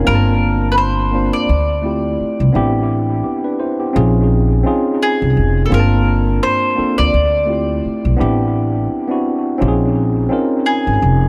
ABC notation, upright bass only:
X:1
M:4/4
L:1/16
Q:"Swing 16ths" 1/4=85
K:Gdor
V:1 name="Upright bass" clef=bass
G,,,6- G,,, z D,,4 z C,, A,,,2- | A,,,2 z4 B,,,4 z3 C,, F,,,2 | G,,,4 z3 D,, D,,4 z =B,,, A,,,2- | A,,,2 z4 B,,,4 z3 _A,,, F,,,2 |]